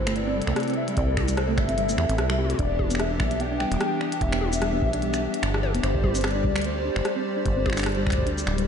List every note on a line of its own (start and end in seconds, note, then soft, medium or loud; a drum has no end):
0.00 0.42 G1 medium
0.00 2.56 C3 medium
0.00 2.56 C4 medium
0.00 2.55 E4 medium
0.00 2.56 A4 medium
0.00 0.17 C5 medium
0.07 0.10 A3 loud
0.07 finger snap medium
0.07 closed hi-hat medium
0.16 0.78 D5 loud
0.16 closed hi-hat medium
0.27 0.35 C4 medium
0.36 0.44 G3 medium
0.42 closed hi-hat medium
0.47 0.54 C2 medium
0.47 0.51 A3 medium
0.47 finger snap medium
0.56 0.64 A3 medium
0.56 cross-stick loud
0.56 closed hi-hat medium
0.60 closed hi-hat soft
0.63 closed hi-hat soft
0.67 0.76 C4 loud
0.67 closed hi-hat soft
0.70 closed hi-hat soft
0.74 0.99 E5 medium
0.74 closed hi-hat soft
0.88 0.94 G3 medium
0.88 closed hi-hat medium
0.97 1.59 C2 loud
0.97 1.37 D5 loud
0.97 kick loud
0.97 closed hi-hat medium
1.17 1.25 C4 medium
1.17 finger snap medium
1.17 kick loud
1.17 high tom medium
1.28 1.34 G3 medium
1.28 closed hi-hat medium
1.28 shaker medium
1.37 1.59 C5 loud
1.37 cross-stick loud
1.37 closed hi-hat medium
1.49 1.52 A3 loud
1.58 1.97 G1 medium
1.58 2.39 E5 loud
1.58 finger snap soft
1.58 kick loud
1.69 1.77 C4 medium
1.69 closed hi-hat medium
1.78 1.85 G3 medium
1.78 closed hi-hat medium
1.89 1.93 A3 medium
1.89 shaker medium
1.98 2.06 E2 medium
1.98 2.06 G4 medium
1.98 finger snap soft
2.09 2.20 A1 medium
2.09 2.13 C4 medium
2.09 closed hi-hat medium
2.18 2.55 C2 medium
2.18 cross-stick loud
2.18 closed hi-hat medium
2.30 2.38 G3 loud
2.30 finger snap medium
2.39 2.43 G4 loud
2.39 high tom soft
2.44 high tom soft
2.50 closed hi-hat medium
2.50 high tom medium
2.54 high tom medium
2.59 3.21 E1 loud
2.59 5.80 E3 medium
2.59 5.80 B3 medium
2.59 2.66 D4 medium
2.59 5.80 D4 medium
2.59 8.68 G4 medium
2.59 3.01 D5 loud
2.59 kick loud
2.59 closed hi-hat soft
2.79 kick loud
2.79 high tom medium
2.91 2.94 B3 loud
2.91 closed hi-hat medium
2.91 shaker medium
2.95 finger snap medium
2.99 3.42 E5 loud
2.99 cross-stick loud
2.99 closed hi-hat medium
3.11 3.19 D4 medium
3.20 3.66 B1 medium
3.20 3.27 G3 medium
3.20 finger snap medium
3.20 kick loud
3.31 3.35 B3 medium
3.31 closed hi-hat medium
3.40 3.48 B3 medium
3.40 4.23 G5 loud
3.40 closed hi-hat medium
3.51 3.60 D4 loud
3.60 3.68 G3 medium
3.60 finger snap soft
3.72 3.78 E1 medium
3.72 3.78 G3 medium
3.72 closed hi-hat medium
3.81 cross-stick loud
3.81 closed hi-hat medium
4.01 4.08 D4 medium
4.01 finger snap soft
4.12 closed hi-hat medium
4.21 4.83 E1 loud
4.21 4.61 E5 loud
4.21 kick loud
4.21 closed hi-hat soft
4.33 4.36 B3 loud
4.33 finger snap medium
4.41 high tom loud
4.53 4.61 D4 medium
4.53 closed hi-hat medium
4.53 shaker medium
4.62 4.69 G3 medium
4.62 5.39 E5 loud
4.62 cross-stick loud
4.62 closed hi-hat medium
4.73 4.77 B3 medium
4.82 5.29 B1 medium
4.82 4.89 B3 medium
4.82 kick loud
4.93 5.02 D4 loud
4.93 closed hi-hat medium
5.02 5.10 G3 medium
5.02 closed hi-hat medium
5.14 5.20 G3 medium
5.14 finger snap soft
5.14 shaker medium
5.34 closed hi-hat medium
5.43 5.76 G1 medium
5.43 5.50 D4 medium
5.43 finger snap medium
5.43 closed hi-hat medium
5.54 cross-stick loud
5.63 high tom medium
5.74 5.81 D1 medium
5.74 5.78 B3 loud
5.74 closed hi-hat medium
5.83 6.46 G1 loud
5.83 8.68 G3 medium
5.83 8.68 C5 medium
5.83 6.26 C5 loud
5.83 8.68 D5 medium
5.83 finger snap medium
5.83 closed hi-hat soft
5.95 6.03 D4 medium
5.95 kick loud
6.04 6.11 G3 medium
6.04 kick loud
6.04 high tom loud
6.15 6.18 C4 medium
6.15 closed hi-hat medium
6.15 shaker medium
6.17 closed hi-hat soft
6.21 6.31 C4 medium
6.21 finger snap medium
6.21 cross-stick loud
6.21 closed hi-hat soft
6.24 6.64 D5 loud
6.24 closed hi-hat medium
6.28 closed hi-hat soft
6.31 closed hi-hat soft
6.35 6.44 D4 loud
6.44 6.91 D2 medium
6.44 6.52 G3 medium
6.44 kick loud
6.55 6.61 G3 medium
6.55 finger snap medium
6.55 closed hi-hat soft
6.58 closed hi-hat soft
6.62 closed hi-hat medium
6.65 8.63 C5 loud
6.65 closed hi-hat medium
6.85 6.92 D4 medium
6.96 7.02 G1 medium
6.96 finger snap medium
7.05 cross-stick loud
7.05 closed hi-hat medium
7.16 7.20 C4 loud
7.37 7.45 D4 medium
7.45 8.08 G1 loud
7.45 7.53 G3 medium
7.45 kick loud
7.45 closed hi-hat medium
7.57 7.60 C4 medium
7.66 7.73 C4 medium
7.66 finger snap soft
7.66 kick loud
7.66 high tom loud
7.70 finger snap soft
7.73 finger snap medium
7.77 7.86 D4 loud
7.77 finger snap medium
7.77 closed hi-hat medium
7.77 shaker medium
7.79 finger snap medium
7.79 closed hi-hat medium
7.82 finger snap medium
7.82 closed hi-hat soft
7.84 7.93 G3 medium
7.84 cross-stick loud
7.84 closed hi-hat soft
7.86 closed hi-hat medium
7.92 closed hi-hat soft
7.95 8.03 G3 medium
7.95 closed hi-hat soft
8.06 8.46 D2 medium
8.06 finger snap medium
8.06 kick loud
8.10 finger snap soft
8.10 kick medium
8.10 closed hi-hat medium
8.13 finger snap soft
8.18 kick medium
8.22 kick medium
8.26 8.34 D4 medium
8.26 closed hi-hat medium
8.38 shaker medium
8.47 8.68 D1 loud
8.47 finger snap medium
8.58 8.62 G3 medium
8.58 closed hi-hat medium